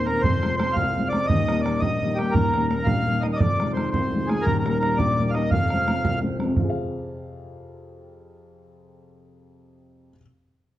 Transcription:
Already playing: upright piano D#1
0.06 upright piano D#3 A#3, accordion A#4, bodhran
0.10 upright piano C4
0.22 upright piano F1 F2, accordion C5, bodhran
0.43 upright piano F3 G#3 C4, bodhran
0.57 upright piano F3 G#3, accordion C5, bodhran
0.61 upright piano C4
0.73 accordion F5, bodhran
0.79 upright piano C2
0.96 upright piano F3 G#3 C4, bodhran
1.09 accordion D5
1.13 upright piano F3 G#3 C4, bodhran
1.26 upright piano D#1, accordion D#5, bodhran
1.31 upright piano D#2
1.48 upright piano D#3 G3 A#3, bodhran
1.61 upright piano D#3 G3 A#3, accordion D5
1.66 bodhran
1.80 upright piano A#1, accordion D#5, bodhran
2.01 upright piano D#3 G3 A#3, bodhran
2.15 upright piano D#3 G3 A#3, accordion G4, bodhran
2.32 upright piano D#1 D#2, accordion A#4, bodhran
2.53 upright piano D#3 G3 A#3, bodhran
2.68 upright piano D#3 G3 A#3, accordion A#4, bodhran
2.84 upright piano A#1, accordion F5, bodhran
3.06 upright piano D#3 G3 A#3, bodhran
3.21 upright piano D#3 G3 A#3, accordion D#5, bodhran
3.33 accordion D5 D#5
3.40 upright piano F1 F2, bodhran
3.60 upright piano D#3 F3 G#3, bodhran
3.74 upright piano D#3 F3 G#3, accordion C5, bodhran
3.91 upright piano C2, accordion C5, bodhran
4.12 upright piano D#3 F3 G#3, bodhran
4.27 upright piano D#3 F3 G#3, accordion G#4, bodhran
4.42 accordion A#4
4.46 upright piano D#1 D#2, bodhran
4.59 accordion A#4
4.64 upright piano D#3 G3 A#3, bodhran
4.69 accordion A#4
4.80 upright piano D#3 G3 A#3, accordion A#4, bodhran
4.97 upright piano A#1, accordion D5, bodhran
5.18 upright piano D#3 G3 A#3, bodhran
5.30 accordion D#5 F5
5.35 upright piano D#3 G3 A#3, bodhran
5.51 upright piano F1 F2, accordion F5, bodhran
5.70 upright piano F3 G#3 C4, bodhran
5.88 upright piano F3 G#3 C4, bodhran
6.05 upright piano C2, bodhran
6.23 upright piano F3 G#3 C4, bodhran
6.39 upright piano F3 G#3 C4, bodhran
6.44 upright piano F2
6.49 upright piano C3
6.55 upright piano C4, bodhran
6.59 upright piano F4
6.64 upright piano G#4
6.70 upright piano F5

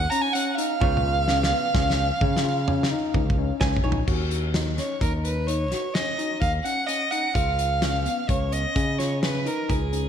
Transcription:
Already playing: hollow-body jazz guitar D#3, violin F#5
0.10 tine electric piano C#4, violin A#5, closed hi-hat
0.21 violin G#5
0.33 tine electric piano C#4, violin F#5, closed hi-hat
0.56 tine electric piano D#4, violin F5, closed hi-hat
0.80 fingered electric bass C#2, hollow-body jazz guitar C#3 B3 F4 C#5, tine electric piano F4, kick
0.97 high tom
1.28 tine electric piano C#4, snare
1.43 snare
1.51 tine electric piano B3
1.74 fingered electric bass C#2, tine electric piano C#4, kick, snare
1.90 snare
2.21 fingered electric bass C#3, tine electric piano C#4, kick, mid tom
2.37 snare
2.45 tine electric piano F4
2.68 tine electric piano C#4, mid tom
2.83 snare
2.91 tine electric piano D#4
3.14 fingered electric bass C#2, kick, floor tom
3.30 kick
3.38 tine electric piano C#4
3.60 fingered electric bass C#2, tine electric piano C#4, hollow-body jazz guitar G#5, kick, snare
3.77 kick
3.84 fingered electric bass A#1, tine electric piano D#4, hollow-body jazz guitar C#5
3.92 floor tom
4.08 fingered electric bass D#2, tine electric piano F#4, kick, crash
4.31 closed hi-hat
4.54 tine electric piano D#4, snare, closed hi-hat
4.78 tine electric piano C#4, violin C#5, snare, closed hi-hat
5.01 fingered electric bass D#2, tine electric piano D#4, violin A#4, kick, closed hi-hat
5.24 violin B4, closed hi-hat
5.47 tine electric piano D#4, violin C#5, closed hi-hat
5.72 tine electric piano F#4, snare, closed hi-hat
5.94 tine electric piano C#4, violin D#5, snare, closed hi-hat
6.19 tine electric piano D#4, closed hi-hat
6.41 fingered electric bass D#2, violin F5, kick, closed hi-hat
6.64 tine electric piano C#4, violin F#5, closed hi-hat
6.87 tine electric piano C#4, violin D#5, closed hi-hat
7.11 tine electric piano D#4, violin F#5, closed hi-hat
7.35 fingered electric bass C#2, tine electric piano F4, violin F5, kick, closed hi-hat
7.59 closed hi-hat
7.82 tine electric piano C#4, snare, closed hi-hat
8.05 tine electric piano B3, closed hi-hat
8.29 fingered electric bass C#2, tine electric piano C#4, violin C#5, kick, closed hi-hat
8.52 violin D#5, closed hi-hat
8.75 fingered electric bass C#3, tine electric piano C#4, kick, closed hi-hat
8.99 tine electric piano F4, violin C#5, snare, closed hi-hat
9.22 tine electric piano C#4, violin B4, snare, closed hi-hat
9.45 tine electric piano D#4, violin A#4, closed hi-hat
9.69 fingered electric bass C#2, violin G#4, kick, closed hi-hat
9.93 tine electric piano C#4, closed hi-hat

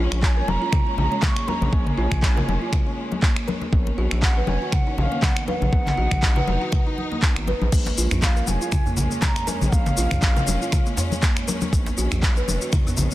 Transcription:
Already playing: string section G#3 A#3 C#4, kalimba F4
0.12 analog synth bass A#1, kalimba F3, finger snap
0.23 bansuri A#5, kick, clap, muted conga
0.27 bansuri G#5
0.37 kalimba A#4
0.48 analog synth bass F1, bansuri A#5, high conga
0.62 kalimba F4
0.73 finger snap, kick, mid tom, muted conga, low conga
0.87 kalimba C#4
0.98 analog synth bass A#1, bansuri A#5, low conga
1.12 kalimba G#3, muted conga
1.22 kalimba A#3, bansuri D#6, kick, clap, high conga, low conga
1.27 bansuri C#6
1.36 finger snap
1.48 kalimba A#4, bansuri A#5, muted conga, high conga
1.61 analog synth bass A#1, mid tom, high conga
1.73 analog synth bass A#1, kalimba A#3, bansuri G#5, kick
1.86 mid tom, muted conga
1.97 analog synth bass A#1, kalimba F4
2.11 analog synth bass A#1, kalimba F3, finger snap, kick, mid tom
2.23 kick, clap, muted conga
2.37 kalimba A#4, low conga
2.48 analog synth bass F1, high conga
2.62 kalimba F4
2.73 finger snap, kick, muted conga, low conga
2.87 kalimba C#4
3.12 kalimba G#3, muted conga, high conga
3.23 kalimba A#3, kick, clap
3.36 finger snap
3.48 kalimba A#4, muted conga, high conga
3.62 high conga
3.73 analog synth bass A#1, string section D#3 C#4, kalimba B3, kick
3.87 muted conga
3.98 analog synth bass A#1, kalimba F#4
4.11 analog synth bass A#1, kalimba F#3, finger snap
4.22 bansuri F#5, kick, clap, muted conga
4.37 kalimba B4
4.47 analog synth bass F1, bansuri G#5, high conga
4.62 kalimba F#4
4.72 bansuri F#5, finger snap, kick, mid tom, muted conga, low conga
4.87 kalimba D#4
4.98 analog synth bass A#1, bansuri F5 F#5, low conga
5.12 kalimba A#3, muted conga
5.23 kalimba B3, bansuri F#5, kick, clap, high conga, low conga
5.37 finger snap
5.48 kalimba B4, bansuri F#5, muted conga, high conga
5.62 analog synth bass A#1, mid tom, high conga
5.73 analog synth bass A#1, kalimba B3, string section D#4, kick
5.87 clap, mid tom, muted conga
5.97 analog synth bass A#1, kalimba F#4
6.11 analog synth bass A#1, kalimba F#3, finger snap, kick, mid tom
6.22 kick, clap, muted conga
6.36 kalimba B4, low conga
6.47 analog synth bass F1, high conga
6.62 kalimba F#4
6.72 finger snap, kick, muted conga, low conga
6.87 kalimba D#4
6.98 high conga
7.11 kalimba A#3, muted conga, high conga
7.22 kalimba B3, kick, clap
7.36 analog synth bass G#1, finger snap
7.47 kalimba B4, muted conga, high conga
7.62 analog synth bass A#1, high conga
7.72 analog synth bass A#1, string section G#3 A#3 C#4, kalimba A#3, kick, crash, shaker
7.86 muted conga, djembe slap, shaker
7.98 analog synth bass A#1, kalimba F4, shaker
8.11 analog synth bass A#1, kalimba F3, finger snap, djembe bass, shaker
8.22 bansuri F5, kick, clap, muted conga, shaker
8.36 kalimba A#4, shaker
8.47 analog synth bass F1, bansuri G#5, high conga, shaker
8.61 kalimba F4, shaker
8.72 finger snap, kick, mid tom, muted conga, djembe tone, low conga, shaker
8.86 kalimba A#3, djembe bass, shaker
8.97 analog synth bass A#1, bansuri G#5, low conga, shaker
9.11 kalimba G#3, muted conga, shaker
9.22 kalimba A#3, bansuri C#6, kick, clap, high conga, low conga, shaker
9.27 bansuri A#5
9.36 finger snap, djembe tone, shaker
9.47 kalimba A#4, bansuri G#5, djembe slap, muted conga, high conga, shaker
9.61 analog synth bass A#1, mid tom, high conga, shaker
9.72 analog synth bass A#1, kalimba A#3, bansuri F5, kick, shaker
9.86 mid tom, djembe slap, muted conga, shaker
9.97 analog synth bass A#1, kalimba F4, shaker
10.11 analog synth bass A#1, kalimba F3, finger snap, kick, mid tom, djembe tone, djembe bass, shaker
10.22 kick, clap, muted conga, shaker
10.36 kalimba A#4, low conga, shaker
10.48 analog synth bass F1, high conga, shaker
10.62 kalimba F4, shaker
10.72 finger snap, kick, muted conga, low conga, shaker
10.86 kalimba A#3, shaker
10.97 djembe slap, djembe tone, djembe bass, shaker
11.12 kalimba G#3, muted conga, high conga, shaker
11.23 kalimba A#3, kick, clap, shaker
11.36 finger snap, djembe tone, shaker
11.48 kalimba A#4, muted conga, high conga, shaker
11.61 high conga, shaker
11.73 analog synth bass A#1, string section D#3, kalimba B3, kick, shaker
11.86 djembe slap, muted conga, shaker
11.98 analog synth bass A#1, kalimba F#4, shaker
12.11 analog synth bass A#1, kalimba F#3, finger snap, djembe bass, shaker
12.23 kick, clap, muted conga, shaker
12.36 kalimba B4, shaker
12.48 analog synth bass F1, high conga, shaker
12.61 kalimba F#4, shaker
12.72 finger snap, kick, mid tom, muted conga, djembe tone, low conga, shaker
12.87 kalimba B3, djembe bass, shaker
12.97 analog synth bass A#1, low conga, shaker
13.11 shaker

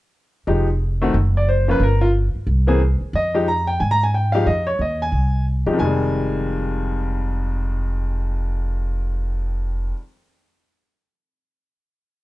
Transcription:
0.47 upright bass F1, upright piano F3 G#3 D#4 G4
1.02 upright piano D#3 A3 C4 F#4
1.14 upright bass F#1
1.37 upright piano D5
1.49 upright piano C5
1.68 upright piano F3 A#3 C#4 F4 B4
1.80 upright bass G1, upright piano A#4
2.01 upright piano F4
2.35 muted upright bass stroke
2.47 upright bass C2
2.67 upright piano E3 A#3 C4 G#4
3.01 muted upright bass stroke
3.13 upright bass F2, upright piano D#5
3.34 upright piano F3 G#3 D#4 G4
3.48 upright piano A#5
3.67 upright piano G5
3.80 upright bass G#2, upright piano G#5
3.91 upright piano A#5
4.03 upright piano G#5
4.14 upright piano G5
4.32 upright piano F3 G#3 D#4 G4 F5
4.46 upright bass F2, upright piano D#5
4.67 upright piano C#5
4.79 upright bass D#2, upright piano D#5
5.02 upright piano G#5
5.12 upright bass C2
5.66 upright bass D#2, upright piano F3 G#3 D#4 G4
5.73 upright piano F2 D#3
5.79 upright bass F1, upright piano G#3 G#5
5.85 upright piano G3

